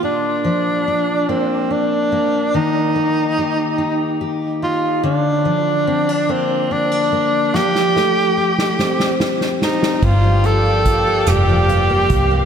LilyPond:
<<
  \new Staff \with { instrumentName = "String section" } { \time 6/8 \key bes \major \tempo 4. = 48 r2. | r2. | r2. | r2. |
<g' d'' f'' g''>2. | }
  \new Staff \with { instrumentName = "Tenor saxophone" } { \time 6/8 \key bes \major d'4. c'8 d'4 | ees'2 r8 f'8 | d'4. c'8 d'4 | g'2 r8 ees'8 |
f'8 a'4 g'4. | }
  \new Staff \with { instrumentName = "Steel-string acoustic guitar" } { \time 6/8 \key bes \major bes,8 f8 d'8 bes8 d'8 bes8 | ees8 bes8 g'8 ees'8 g'8 ees'8 | d8 f8 c'16 d'16 bes8 c'16 d'16 bes8 | f8 a8 g'8 c'8 g'8 c'8 |
<g, f'>16 f16 f'16 bes16 f'16 bes16 <g, f'>16 f16 f'16 bes16 f'16 bes16 | }
  \new Staff \with { instrumentName = "Fingered electric bass" } { \clef bass \time 6/8 \key bes \major r2. | r2. | r2. | r2. |
g,,4. f,,4 c,8 | }
  \new DrumStaff \with { instrumentName = "Drums" } \drummode { \time 6/8 r4. r4. | r4. r4. | r4. r4. | sn16 sn16 sn8. sn16 sn16 sn16 sn16 sn16 sn16 sn16 |
<cymc bd>8 hh8 <hh bd>8 <hh ss>8 hh8 <hh bd>8 | }
>>